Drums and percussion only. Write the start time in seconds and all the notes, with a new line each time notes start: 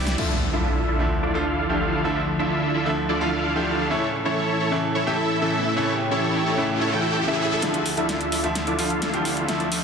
0.07 snare, closed hi-hat, shaker
0.18 crash
7.62 snare, closed hi-hat
7.74 closed hi-hat
7.86 open hi-hat
7.97 closed hi-hat
8.09 snare, closed hi-hat
8.21 closed hi-hat
8.32 open hi-hat
8.44 closed hi-hat
8.55 snare, closed hi-hat
8.67 closed hi-hat
8.79 open hi-hat
8.90 closed hi-hat
9.02 snare, closed hi-hat
9.14 closed hi-hat
9.25 open hi-hat
9.37 closed hi-hat
9.48 snare, closed hi-hat
9.60 closed hi-hat
9.72 open hi-hat